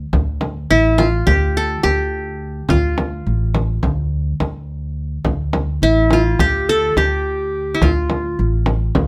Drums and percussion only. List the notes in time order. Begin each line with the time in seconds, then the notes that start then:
0.13 frame drum
0.41 frame drum
0.99 frame drum
1.27 frame drum
1.84 frame drum
2.69 frame drum
2.98 frame drum
3.55 frame drum
3.83 frame drum
4.40 frame drum
5.25 frame drum
5.53 frame drum
6.11 frame drum
6.39 frame drum
6.97 frame drum
7.82 frame drum
8.10 frame drum
8.66 frame drum
8.95 frame drum